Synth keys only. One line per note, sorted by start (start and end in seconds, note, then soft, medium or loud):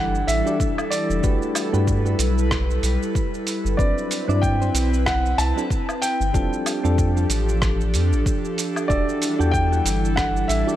0.45 0.54 D4 medium
0.45 0.54 F#4 medium
0.45 0.54 G4 medium
0.45 0.55 A4 medium
0.45 0.55 D5 medium
1.22 1.69 A3 medium
1.22 1.69 D4 medium
1.22 1.69 F#4 medium
1.22 1.70 G4 medium
1.22 1.70 B4 medium
1.72 2.01 A3 medium
1.72 2.01 D4 medium
1.72 2.01 F#4 medium
1.72 2.01 G4 medium
1.72 2.02 B4 medium
2.04 2.13 A3 medium
2.04 2.14 D4 medium
2.04 2.14 F#4 medium
2.04 2.14 G4 medium
2.04 2.14 B4 medium
3.78 4.24 F#3 medium
3.78 4.24 C4 medium
3.78 4.25 D4 medium
3.78 4.25 E4 medium
3.78 4.25 B4 medium
4.28 4.56 F#3 loud
4.28 4.56 C4 medium
4.28 4.56 D4 medium
4.28 4.57 E4 loud
4.28 4.57 D5 loud
4.60 4.69 F#3 medium
4.60 4.69 C4 medium
4.60 4.69 D4 medium
4.60 4.69 E4 medium
4.60 4.70 C5 medium
5.56 5.65 F#3 medium
5.56 5.65 C4 medium
5.56 5.65 D4 medium
5.56 5.65 E4 medium
5.56 5.66 A4 medium
6.33 6.80 G3 medium
6.33 6.80 C4 medium
6.33 6.80 D4 medium
6.33 6.80 F4 medium
6.33 6.81 A4 medium
6.83 7.11 G3 medium
6.83 7.12 C4 medium
6.83 7.12 D4 medium
6.83 7.12 F4 medium
6.83 7.12 A4 loud
7.15 7.24 G3 medium
7.15 7.24 C4 medium
7.15 7.24 D4 medium
7.15 7.25 F4 medium
7.15 7.25 A4 medium
8.88 9.35 D4 medium
8.88 9.35 F#4 medium
8.88 9.35 G4 medium
8.88 9.36 A4 medium
8.88 9.36 E5 medium
9.39 9.67 D4 loud
9.39 9.67 F#4 medium
9.39 9.67 G4 medium
9.39 9.67 A4 medium
9.39 9.68 G5 loud
9.70 9.79 D4 medium
9.70 9.80 F#4 medium
9.70 9.80 G4 medium
9.70 9.80 A4 medium
9.70 9.80 F#5 medium
10.66 10.75 D4 medium
10.66 10.75 F#4 medium
10.66 10.76 G4 medium
10.66 10.76 A4 medium
10.66 10.76 D5 medium